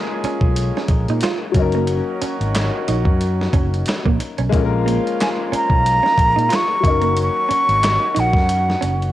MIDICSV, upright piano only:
0, 0, Header, 1, 2, 480
1, 0, Start_track
1, 0, Key_signature, 6, "major"
1, 0, Tempo, 659341
1, 1371, Time_signature, 4, 2, 24, 8
1, 6639, End_track
2, 0, Start_track
2, 0, Title_t, "Upright piano"
2, 0, Program_c, 0, 0
2, 0, Control_c, 0, 64, 127
2, 0, Note_on_c, 0, 56, 89
2, 0, Note_on_c, 0, 58, 74
2, 0, Note_on_c, 0, 61, 76
2, 0, Note_on_c, 0, 65, 76
2, 0, Note_on_c, 0, 70, 86
2, 1088, Note_off_c, 0, 56, 0
2, 1096, Note_off_c, 0, 58, 0
2, 1105, Note_off_c, 0, 61, 0
2, 1106, Note_on_c, 0, 54, 87
2, 1113, Note_off_c, 0, 65, 0
2, 1127, Note_on_c, 0, 58, 66
2, 1139, Control_c, 0, 64, 0
2, 1143, Note_on_c, 0, 61, 77
2, 1146, Note_off_c, 0, 70, 0
2, 1161, Note_on_c, 0, 63, 73
2, 1177, Note_on_c, 0, 70, 88
2, 1273, Control_c, 0, 64, 127
2, 3009, Note_off_c, 0, 54, 0
2, 3020, Note_off_c, 0, 58, 0
2, 3028, Note_off_c, 0, 61, 0
2, 3037, Note_off_c, 0, 63, 0
2, 3045, Note_off_c, 0, 70, 0
2, 3272, Note_on_c, 0, 56, 94
2, 3286, Note_on_c, 0, 58, 86
2, 3299, Control_c, 0, 64, 0
2, 3304, Note_on_c, 0, 61, 75
2, 3320, Note_on_c, 0, 65, 79
2, 3337, Note_on_c, 0, 69, 72
2, 3368, Note_off_c, 0, 69, 0
2, 3385, Note_on_c, 0, 70, 96
2, 3443, Control_c, 0, 64, 127
2, 4932, Note_off_c, 0, 56, 0
2, 4939, Note_off_c, 0, 58, 0
2, 4949, Note_off_c, 0, 61, 0
2, 4952, Note_on_c, 0, 54, 68
2, 4956, Note_off_c, 0, 65, 0
2, 4971, Note_on_c, 0, 58, 63
2, 4981, Control_c, 0, 64, 0
2, 4987, Note_on_c, 0, 61, 59
2, 4989, Note_off_c, 0, 70, 0
2, 5002, Note_on_c, 0, 63, 63
2, 5021, Note_on_c, 0, 70, 80
2, 5120, Control_c, 0, 64, 127
2, 6639, Note_off_c, 0, 54, 0
2, 6639, Note_off_c, 0, 58, 0
2, 6639, Note_off_c, 0, 61, 0
2, 6639, Note_off_c, 0, 63, 0
2, 6639, Note_off_c, 0, 70, 0
2, 6639, End_track
0, 0, End_of_file